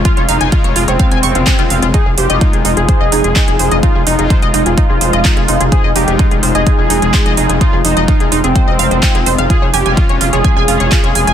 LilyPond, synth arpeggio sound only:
\new Staff \with { instrumentName = "Synth arpeggio sound" } { \time 4/4 \key f \minor \tempo 4 = 127 f'16 des''16 f''16 aes''16 f'16 des''16 f'16 des''16 f''16 aes''16 des'''16 f'16 aes'16 f'16 f''16 f'16 | ees'16 aes'16 c''16 ees''16 ees'16 aes'16 ees'16 aes'16 c''16 ees''16 ees'16 aes'16 ees'16 aes'16 c''16 ees''16 | ees'16 aes'16 ees'16 aes'16 c''16 ees''16 ees'16 aes'16 ees'16 aes'16 c''16 ees''16 ees'16 aes'16 ees'16 aes'16 | c''16 ees''16 ees'16 aes'16 ees'16 aes'16 c''16 ees''16 ees'16 aes'16 ees'16 aes'16 c''16 ees''16 ees'16 aes'16 |
ees'16 aes'16 c''16 ees''16 ees'16 aes'16 ees'16 aes'16 c''16 ees''16 f''16 c''16 f'16 aes'16 c''16 f''16 | f'16 des''16 aes''16 aes''16 f'16 des''16 f'16 des''16 aes''16 aes''16 f'16 des''16 f'16 des''16 aes''16 aes''16 | }